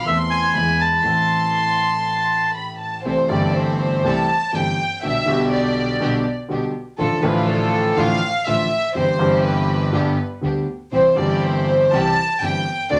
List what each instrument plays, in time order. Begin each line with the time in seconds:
0.05 grand piano E2 E3 A3 C4 A4, double bass E2, bandoneon E5, violin section C6
0.30 bandoneon G#5
0.54 double bass E2, grand piano E2 E3 G#3 B3, violin section B5
0.58 grand piano G#4
0.81 bandoneon A5
1.03 grand piano A1 A2 E3 A3 C4 A4, double bass A1, violin section C6
2.54 violin section B5
2.79 violin section A5
3.04 double bass C2, grand piano C2 C3 E3 A3 C4 G4, string section C4 E4 A4, violin section C5
3.28 grand piano G1 G2 E3 A3 C4, double bass G1, string section C4 E4 A4, violin section D5
3.32 grand piano G4
3.56 violin section C5
4.04 double bass C2, grand piano C2 C3 E3 A3 C4 G4, string section C4 E4 A4, violin section A5
4.53 grand piano G1 G2 E3 A3 C4 G4, double bass G1, string section C4 E4 A4, violin section G5
5.02 grand piano B1 B2 D3 G3 B3 G4, double bass B1, string section B3 D4 G4, violin section E5
5.25 grand piano B1 B2 D3 G3 B3, double bass B1, string section B3 D4 G4
5.30 grand piano G4
5.53 violin section D5
6.00 grand piano B1 B2 D3 G3 B3 G4, double bass B1, string section B3 D4 G4
6.48 grand piano B1 B2 D3 G3 B3 G4, double bass B1, string section B3 D4 G4
6.98 grand piano A1 A2 D3 F3 A3 F4, double bass A1, string section A3 D4 F4, violin section A4
7.21 grand piano A1 A2 D3 F3 A3, double bass A1, string section A3 D4 F4, violin section B4
7.25 grand piano F4
7.49 violin section A4
7.97 double bass A1, grand piano A1 A2 D3 F3 A3 F4, string section A3 D4 F4, violin section F5
8.45 grand piano A1 A2 D3 F3 A3 F4, double bass A1, string section A3 D4 F4, violin section E5
8.95 grand piano G1 G2 E3 G3 C4 G4, double bass G1, string section C4 E4 G4, violin section C5
9.17 grand piano G1 G2 E3 G3 C4 G4, double bass G1, string section C4 E4 G4
9.45 violin section B4
9.92 double bass G1, grand piano G1 G2 D3 G3 B3 G4, string section B3 D4 G4
10.41 grand piano D2 D3 G3 B3 G4, double bass D2, string section B3 D4 G4
10.92 double bass C2, grand piano C2 C3 E3 G3 C4 G4, string section C4 E4 G4, violin section C5
11.15 grand piano G1 G2 E3 G3 C4 G4, double bass G1, string section C4 E4 G4, violin section D5
11.43 violin section C5
11.91 double bass C2, grand piano C2 C3 E3 G3 C4 G4, string section C4 E4 G4, violin section A5
12.40 double bass G1, grand piano G1 G2 E3 G3 C4 G4, string section C4 E4 G4, violin section G5
12.90 grand piano D2 D3 A3 C4 F#4, double bass D2, string section C4 D4 F#4, violin section D5